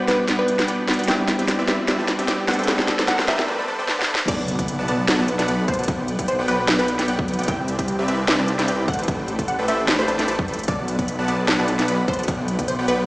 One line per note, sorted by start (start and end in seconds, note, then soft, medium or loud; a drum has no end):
0.00 1.06 B2 medium
0.00 0.85 G3 medium
0.00 1.06 G3 medium
0.00 0.86 B3 medium
0.00 0.86 D4 medium
0.00 3.44 D4 medium
0.00 1.06 E4 medium
0.00 0.87 F#4 loud
0.00 3.44 B4 medium
0.00 riser medium
0.08 0.26 B3 medium
0.08 0.26 B4 medium
0.08 0.26 D5 medium
0.08 0.26 F#5 medium
0.08 0.26 G5 loud
0.08 snare medium
0.08 closed hi-hat medium
0.28 0.36 B3 medium
0.28 0.36 B4 medium
0.28 0.36 D5 medium
0.28 0.36 F#5 medium
0.28 0.36 G5 loud
0.28 snare medium
0.28 closed hi-hat medium
0.39 0.56 B3 medium
0.39 1.01 B4 loud
0.39 0.56 B4 medium
0.39 0.56 D5 medium
0.39 0.56 F#5 medium
0.39 0.56 G5 medium
0.48 closed hi-hat medium
0.59 0.66 B3 medium
0.59 0.66 B4 medium
0.59 0.66 D5 medium
0.59 0.66 F#5 medium
0.59 0.66 G5 medium
0.59 snare medium
0.59 closed hi-hat medium
0.68 0.86 B3 medium
0.68 0.86 B4 medium
0.68 0.86 D5 medium
0.68 0.86 F#5 medium
0.68 0.86 G5 medium
0.68 closed hi-hat medium
0.87 1.05 G3 medium
0.87 1.06 B3 medium
0.87 0.96 B3 medium
0.87 1.06 D4 medium
0.87 1.06 F#4 medium
0.87 0.96 B4 medium
0.87 0.96 D5 medium
0.87 0.96 F#5 medium
0.87 0.96 G5 medium
0.87 snare medium
0.87 closed hi-hat soft
0.94 closed hi-hat medium
0.99 1.06 B3 medium
0.99 1.06 B4 medium
0.99 1.06 D5 medium
0.99 1.06 F#5 medium
0.99 1.06 G5 loud
0.99 closed hi-hat soft
1.04 2.45 G3 medium
1.04 2.46 B3 medium
1.04 closed hi-hat medium
1.08 2.47 E3 medium
1.08 1.36 C4 medium
1.08 2.46 D4 medium
1.08 2.47 E4 medium
1.08 1.36 G4 medium
1.08 1.36 B4 medium
1.08 1.36 D5 medium
1.08 1.36 E5 loud
1.08 1.26 G5 medium
1.08 snare medium
1.08 closed hi-hat medium
1.28 snare medium
1.28 closed hi-hat medium
1.39 1.56 C4 medium
1.39 1.56 G4 medium
1.39 1.56 B4 medium
1.39 1.56 D5 medium
1.39 1.56 G5 medium
1.39 closed hi-hat medium
1.48 snare medium
1.48 closed hi-hat medium
1.59 1.66 C4 loud
1.59 1.66 G4 medium
1.59 1.66 B4 medium
1.59 1.66 D5 medium
1.59 1.66 E5 loud
1.68 1.86 C4 medium
1.68 1.86 G4 medium
1.68 1.86 B4 medium
1.68 1.86 D5 medium
1.68 1.86 E5 loud
1.68 snare medium
1.68 closed hi-hat medium
1.88 1.96 C4 medium
1.88 1.96 G4 medium
1.88 1.96 B4 medium
1.88 1.96 D5 medium
1.88 1.96 E5 loud
1.88 snare medium
1.88 closed hi-hat medium
1.99 2.16 C4 medium
1.99 2.16 G4 medium
1.99 2.16 B4 medium
1.99 2.16 D5 medium
1.99 2.16 A5 medium
2.08 snare medium
2.08 closed hi-hat medium
2.19 2.26 C4 medium
2.19 2.26 G4 medium
2.19 2.26 B4 medium
2.19 2.26 D5 medium
2.19 2.26 E5 medium
2.19 closed hi-hat medium
2.28 2.46 C4 medium
2.28 2.46 G4 medium
2.28 2.46 B4 medium
2.28 2.46 D5 medium
2.28 2.46 G5 medium
2.28 snare medium
2.28 closed hi-hat medium
2.47 2.65 G3 loud
2.47 3.47 G3 medium
2.47 2.56 A3 medium
2.47 2.66 B3 medium
2.47 2.66 C4 medium
2.47 2.66 D4 loud
2.47 2.56 A4 medium
2.47 3.47 A4 medium
2.47 2.56 B4 medium
2.47 2.56 C5 medium
2.47 2.56 D5 medium
2.47 2.56 F#5 medium
2.47 2.60 F#5 medium
2.47 snare medium
2.47 closed hi-hat soft
2.53 closed hi-hat medium
2.59 2.66 A3 medium
2.59 2.66 A4 medium
2.59 2.66 B4 medium
2.59 2.66 C5 medium
2.59 2.66 D5 medium
2.59 2.66 G5 loud
2.59 closed hi-hat soft
2.63 3.47 G3 medium
2.63 3.48 B3 medium
2.63 closed hi-hat medium
2.68 2.96 A3 loud
2.68 3.48 C4 medium
2.68 3.49 D4 loud
2.68 2.96 A4 medium
2.68 2.96 B4 medium
2.68 2.96 C5 medium
2.68 2.96 D5 medium
2.68 2.96 G5 loud
2.68 snare medium
2.68 closed hi-hat medium
2.79 snare medium
2.88 snare medium
2.88 closed hi-hat medium
2.99 3.16 A3 medium
2.99 3.16 A4 medium
2.99 3.16 B4 medium
2.99 3.16 C5 medium
2.99 3.16 D5 medium
2.99 3.16 A5 medium
2.99 snare medium
2.99 closed hi-hat medium
3.08 3.20 F#5 medium
3.08 snare loud
3.08 closed hi-hat medium
3.19 3.26 A3 loud
3.19 3.26 A4 medium
3.19 3.26 B4 medium
3.19 3.26 C5 medium
3.19 3.26 D5 medium
3.19 3.26 G5 loud
3.19 snare medium
3.28 3.46 A3 medium
3.28 3.46 A4 medium
3.28 3.46 B4 medium
3.28 3.46 C5 medium
3.28 3.46 D5 medium
3.28 3.46 E5 loud
3.28 3.46 G5 loud
3.28 snare loud
3.28 closed hi-hat medium
3.39 snare medium
3.48 3.56 A3 medium
3.48 3.56 A4 medium
3.48 3.56 B4 medium
3.48 3.56 C5 medium
3.48 3.56 D5 medium
3.48 3.56 G5 loud
3.59 3.66 A3 medium
3.59 3.66 A4 medium
3.59 3.66 B4 medium
3.59 3.66 C5 medium
3.59 3.66 D5 medium
3.59 3.66 B5 medium
3.68 3.76 A3 medium
3.68 3.76 A4 medium
3.68 3.76 B4 medium
3.68 3.76 C5 medium
3.68 3.76 D5 medium
3.68 3.76 A5 medium
3.79 3.87 A3 medium
3.79 3.87 A4 medium
3.79 3.87 B4 medium
3.79 3.87 C5 medium
3.79 3.87 D5 medium
3.79 3.87 G5 loud
3.88 3.96 A3 loud
3.88 3.96 A4 medium
3.88 3.96 B4 medium
3.88 3.96 C5 medium
3.88 3.96 D5 medium
3.88 3.96 A5 loud
3.88 snare medium
3.99 4.06 A3 medium
3.99 4.06 A4 medium
3.99 4.06 B4 medium
3.99 4.06 C5 medium
3.99 4.06 D5 medium
3.99 4.06 F#5 loud
3.99 snare medium
4.08 4.20 A3 medium
4.08 4.20 A4 medium
4.08 4.20 B4 medium
4.08 4.20 C5 medium
4.08 4.20 D5 medium
4.08 4.20 B5 medium
4.15 snare medium
4.28 4.57 B1 loud
4.28 4.56 B3 loud
4.28 4.56 B4 medium
4.28 4.56 D5 medium
4.28 4.46 D5 loud
4.28 4.56 F#5 medium
4.28 4.56 A5 loud
4.28 kick loud
4.28 closed hi-hat medium
4.28 crash loud
4.28 impact medium
4.48 closed hi-hat medium
4.59 4.77 B1 loud
4.59 4.76 B3 medium
4.59 4.76 B4 medium
4.59 4.76 D5 medium
4.59 4.76 F#5 medium
4.59 4.76 B5 medium
4.59 kick medium
4.59 closed hi-hat medium
4.68 closed hi-hat medium
4.79 4.86 B1 medium
4.79 4.86 B3 medium
4.79 4.86 B4 medium
4.79 4.86 D5 medium
4.79 4.86 F#5 medium
4.79 4.86 A5 loud
4.88 5.06 B1 medium
4.88 5.06 B3 medium
4.88 5.06 B4 medium
4.88 5.06 D5 medium
4.88 5.06 F#5 medium
4.88 5.06 A5 loud
4.88 closed hi-hat medium
5.08 5.17 B1 loud
5.08 5.16 B3 medium
5.08 5.16 B4 medium
5.08 5.16 D5 medium
5.08 5.16 F#5 medium
5.08 5.16 A5 loud
5.08 snare loud
5.08 closed hi-hat medium
5.19 5.37 B1 loud
5.19 5.36 B3 medium
5.19 5.36 B4 medium
5.19 5.36 D5 medium
5.19 5.36 F#5 medium
5.19 5.36 A5 medium
5.28 closed hi-hat medium
5.39 5.46 B1 medium
5.39 5.46 B3 medium
5.39 5.46 B4 medium
5.39 5.46 D5 medium
5.39 5.46 F#5 medium
5.39 5.46 A5 medium
5.39 snare soft
5.39 closed hi-hat medium
5.48 5.66 B1 medium
5.48 5.66 B3 medium
5.48 5.66 B4 medium
5.48 5.66 D5 medium
5.48 5.66 F#5 medium
5.48 5.66 B5 medium
5.48 closed hi-hat medium
5.68 5.77 B1 medium
5.68 5.76 B3 medium
5.68 5.76 B4 medium
5.68 5.80 C5 medium
5.68 5.76 D5 medium
5.68 5.76 F#5 medium
5.68 5.76 A5 medium
5.68 kick loud
5.68 closed hi-hat soft
5.74 closed hi-hat medium
5.79 5.86 B1 loud
5.79 5.86 B3 medium
5.79 5.86 B4 medium
5.79 5.86 D5 medium
5.79 5.86 F#5 medium
5.79 5.86 A5 loud
5.79 closed hi-hat medium
5.84 closed hi-hat medium
5.88 6.17 B1 loud
5.88 6.16 B3 medium
5.88 6.16 B4 medium
5.88 6.16 D5 medium
5.88 6.16 F#5 medium
5.88 6.16 G5 loud
5.88 kick loud
5.88 closed hi-hat medium
6.08 closed hi-hat medium
6.19 6.37 B1 loud
6.19 6.36 B3 medium
6.19 6.36 B4 medium
6.19 6.36 D5 medium
6.19 6.36 F#5 medium
6.19 6.36 G5 medium
6.19 kick medium
6.19 closed hi-hat medium
6.28 6.40 C5 medium
6.28 closed hi-hat medium
6.39 6.46 B1 medium
6.39 6.46 B3 loud
6.39 6.46 B4 medium
6.39 6.46 D5 medium
6.39 6.46 F#5 medium
6.39 6.46 G5 loud
6.48 6.66 B1 loud
6.48 6.66 B3 medium
6.48 6.66 B4 medium
6.48 6.66 B4 loud
6.48 6.66 D5 medium
6.48 6.66 F#5 medium
6.48 6.66 G5 loud
6.48 closed hi-hat medium
6.68 6.77 B1 loud
6.68 6.76 B3 medium
6.68 6.76 B4 medium
6.68 6.76 D5 medium
6.68 6.76 F#5 medium
6.68 6.76 G5 loud
6.68 snare loud
6.68 closed hi-hat medium
6.79 6.97 B1 loud
6.79 6.96 B3 medium
6.79 6.96 B4 medium
6.79 7.41 B4 loud
6.79 6.96 D5 medium
6.79 6.96 F#5 medium
6.79 6.96 G5 medium
6.88 closed hi-hat medium
6.99 7.06 B1 medium
6.99 7.06 B3 medium
6.99 7.06 B4 medium
6.99 7.06 D5 medium
6.99 7.06 F#5 medium
6.99 7.06 G5 medium
6.99 snare soft
6.99 closed hi-hat medium
7.08 7.26 B1 loud
7.08 7.26 B3 medium
7.08 7.26 B4 medium
7.08 7.26 D5 medium
7.08 7.26 F#5 medium
7.08 7.26 G5 medium
7.08 closed hi-hat medium
7.19 kick loud
7.28 7.37 B1 medium
7.28 7.36 B3 medium
7.28 7.36 B4 medium
7.28 7.36 D5 medium
7.28 7.36 F#5 medium
7.28 7.36 G5 medium
7.28 closed hi-hat soft
7.33 closed hi-hat medium
7.39 7.46 B1 medium
7.39 7.46 B3 medium
7.39 7.46 B4 medium
7.39 7.46 D5 medium
7.39 7.46 F#5 medium
7.39 7.46 G5 loud
7.39 closed hi-hat medium
7.43 closed hi-hat medium
7.48 7.77 C2 loud
7.48 7.76 C4 medium
7.48 7.76 G4 medium
7.48 7.76 B4 medium
7.48 7.76 D5 medium
7.48 7.76 E5 loud
7.48 7.66 G5 loud
7.48 kick loud
7.48 closed hi-hat medium
7.68 closed hi-hat medium
7.79 7.97 C2 loud
7.79 7.96 C4 medium
7.79 7.96 G4 medium
7.79 7.96 B4 medium
7.79 7.96 D5 medium
7.79 7.96 G5 medium
7.79 kick medium
7.79 closed hi-hat medium
7.88 closed hi-hat medium
7.99 8.06 C2 loud
7.99 8.06 C4 loud
7.99 8.06 G4 medium
7.99 8.06 B4 medium
7.99 8.06 D5 medium
7.99 8.06 E5 loud
8.08 8.26 C2 loud
8.08 8.26 C4 loud
8.08 8.26 G4 medium
8.08 8.26 B4 medium
8.08 8.26 D5 medium
8.08 8.26 E5 loud
8.08 closed hi-hat medium
8.28 8.37 C2 loud
8.28 8.36 C4 medium
8.28 8.36 G4 medium
8.28 8.36 B4 medium
8.28 8.36 D5 medium
8.28 8.36 E5 loud
8.28 snare loud
8.28 closed hi-hat medium
8.39 8.57 C2 loud
8.39 8.56 C4 medium
8.39 8.56 G4 medium
8.39 8.56 B4 medium
8.39 8.56 D5 medium
8.39 8.56 A5 medium
8.48 closed hi-hat medium
8.59 8.66 C2 loud
8.59 8.66 C4 medium
8.59 8.66 G4 medium
8.59 8.66 B4 medium
8.59 8.66 D5 medium
8.59 8.66 E5 medium
8.59 snare soft
8.59 closed hi-hat medium
8.68 8.90 C2 loud
8.68 8.86 C4 medium
8.68 8.86 G4 medium
8.68 8.86 B4 medium
8.68 8.86 D5 medium
8.68 8.86 G5 medium
8.68 closed hi-hat medium
8.88 8.97 A1 loud
8.88 8.96 A3 medium
8.88 8.96 A4 medium
8.88 8.96 B4 medium
8.88 8.96 C5 medium
8.88 8.96 D5 medium
8.88 8.96 F#5 medium
8.88 9.00 F#5 medium
8.88 kick loud
8.88 closed hi-hat soft
8.93 closed hi-hat medium
8.99 9.06 A1 loud
8.99 9.06 A3 medium
8.99 9.06 A4 medium
8.99 9.06 B4 medium
8.99 9.06 C5 medium
8.99 9.06 D5 medium
8.99 9.06 G5 loud
8.99 closed hi-hat soft
9.03 closed hi-hat medium
9.08 9.37 A1 loud
9.08 9.36 A3 medium
9.08 9.36 A4 medium
9.08 9.36 B4 medium
9.08 9.36 C5 medium
9.08 9.36 D5 medium
9.08 9.36 G5 loud
9.08 kick loud
9.08 closed hi-hat medium
9.28 closed hi-hat medium
9.39 9.57 A1 loud
9.39 9.56 A3 medium
9.39 9.56 A4 medium
9.39 9.56 B4 medium
9.39 9.56 C5 medium
9.39 9.56 D5 medium
9.39 9.56 A5 medium
9.39 kick medium
9.39 closed hi-hat medium
9.48 9.60 F#5 medium
9.48 closed hi-hat medium
9.59 9.66 A1 medium
9.59 9.66 A3 loud
9.59 9.66 A4 medium
9.59 9.66 B4 medium
9.59 9.66 C5 medium
9.59 9.66 D5 medium
9.59 9.66 G5 loud
9.68 9.86 A1 medium
9.68 9.86 A3 loud
9.68 9.86 A4 medium
9.68 9.86 B4 medium
9.68 9.86 C5 medium
9.68 9.86 D5 medium
9.68 9.86 E5 medium
9.68 9.86 G5 loud
9.68 closed hi-hat medium
9.88 9.97 A1 loud
9.88 9.96 A3 medium
9.88 9.96 A4 medium
9.88 9.96 B4 medium
9.88 9.96 C5 medium
9.88 9.96 D5 medium
9.88 9.96 G5 medium
9.88 snare loud
9.88 closed hi-hat medium
9.99 10.06 A1 loud
9.99 10.06 A3 medium
9.99 10.06 A4 medium
9.99 10.06 B4 medium
9.99 10.61 C5 loud
9.99 10.06 C5 medium
9.99 10.06 D5 medium
9.99 10.06 B5 medium
10.08 10.17 A1 loud
10.08 10.16 A3 medium
10.08 10.16 A4 medium
10.08 10.16 B4 medium
10.08 10.16 C5 medium
10.08 10.16 D5 medium
10.08 10.16 A5 medium
10.08 closed hi-hat medium
10.19 10.26 A1 loud
10.19 10.27 A3 medium
10.19 10.27 A4 medium
10.19 10.27 B4 medium
10.19 10.27 C5 medium
10.19 10.27 D5 medium
10.19 10.27 G5 loud
10.19 snare soft
10.19 closed hi-hat medium
10.28 10.40 A1 loud
10.28 10.36 A3 loud
10.28 10.36 A4 medium
10.28 10.36 B4 medium
10.28 10.36 C5 medium
10.28 10.36 D5 medium
10.28 10.36 A5 loud
10.28 closed hi-hat medium
10.39 10.46 A2 loud
10.39 10.46 A3 medium
10.39 10.46 A4 medium
10.39 10.46 B4 medium
10.39 10.46 C5 medium
10.39 10.46 F#5 loud
10.39 kick loud
10.48 10.66 A1 medium
10.48 10.60 A3 medium
10.48 10.60 A4 medium
10.48 10.60 B4 medium
10.48 10.60 C5 medium
10.48 10.60 D5 medium
10.48 10.60 B5 medium
10.48 closed hi-hat soft
10.53 closed hi-hat medium
10.59 closed hi-hat soft
10.63 closed hi-hat medium
10.68 10.97 B1 loud
10.68 10.96 B3 loud
10.68 10.96 B4 medium
10.68 10.86 D5 loud
10.68 10.96 D5 medium
10.68 10.96 F#5 medium
10.68 10.96 A5 loud
10.68 kick loud
10.68 closed hi-hat medium
10.88 closed hi-hat medium
10.99 11.17 B1 loud
10.99 11.16 B3 medium
10.99 11.16 B4 medium
10.99 11.16 D5 medium
10.99 11.16 F#5 medium
10.99 11.16 B5 medium
10.99 kick medium
10.99 closed hi-hat medium
11.08 closed hi-hat medium
11.19 11.26 B1 medium
11.19 11.26 B3 loud
11.19 11.26 B4 medium
11.19 11.26 D5 medium
11.19 11.26 F#5 medium
11.19 11.26 A5 loud
11.28 11.46 B1 loud
11.28 11.46 B3 medium
11.28 11.46 B4 medium
11.28 11.46 D5 medium
11.28 11.46 F#5 medium
11.28 11.46 A5 loud
11.28 closed hi-hat medium
11.48 11.57 B1 loud
11.48 11.56 B3 medium
11.48 11.56 B4 medium
11.48 11.56 D5 medium
11.48 11.56 F#5 medium
11.48 11.56 A5 loud
11.48 snare loud
11.48 closed hi-hat medium
11.59 11.77 B1 loud
11.59 11.76 B3 medium
11.59 11.76 B4 medium
11.59 11.76 D5 medium
11.59 11.76 F#5 medium
11.59 11.76 A5 medium
11.68 closed hi-hat medium
11.79 11.86 B1 loud
11.79 11.86 B3 medium
11.79 11.86 B4 medium
11.79 11.86 D5 medium
11.79 11.86 F#5 medium
11.79 11.86 A5 medium
11.79 snare soft
11.79 closed hi-hat medium
11.88 12.06 B1 loud
11.88 12.06 B3 medium
11.88 12.06 B4 medium
11.88 12.06 D5 medium
11.88 12.06 F#5 medium
11.88 12.06 B5 medium
11.88 closed hi-hat medium
12.08 12.17 B1 loud
12.08 12.16 B3 medium
12.08 12.16 B4 medium
12.08 12.20 C5 medium
12.08 12.16 D5 medium
12.08 12.16 F#5 medium
12.08 12.16 A5 medium
12.08 kick loud
12.08 closed hi-hat soft
12.13 closed hi-hat medium
12.19 12.26 B1 loud
12.19 12.26 B3 medium
12.19 12.26 B4 medium
12.19 12.26 D5 medium
12.19 12.26 F#5 medium
12.19 12.26 A5 loud
12.19 closed hi-hat soft
12.23 closed hi-hat medium
12.28 12.57 B1 loud
12.28 12.56 B3 medium
12.28 12.56 B4 medium
12.28 12.56 D5 medium
12.28 12.56 F#5 medium
12.28 12.56 G5 loud
12.28 kick loud
12.28 closed hi-hat medium
12.48 closed hi-hat medium
12.59 12.77 B1 loud
12.59 12.76 B3 medium
12.59 12.76 B4 medium
12.59 12.76 D5 medium
12.59 12.76 F#5 medium
12.59 12.76 G5 medium
12.59 kick medium
12.59 closed hi-hat medium
12.68 12.80 C5 medium
12.68 closed hi-hat medium
12.79 12.86 B1 medium
12.79 12.86 B3 loud
12.79 12.86 B4 medium
12.79 12.86 D5 medium
12.79 12.86 F#5 medium
12.79 12.86 G5 loud
12.88 13.06 B1 loud
12.88 13.06 B3 medium
12.88 13.06 B4 medium
12.88 13.06 B4 loud
12.88 13.06 D5 medium
12.88 13.06 F#5 medium
12.88 13.06 G5 loud
12.88 closed hi-hat medium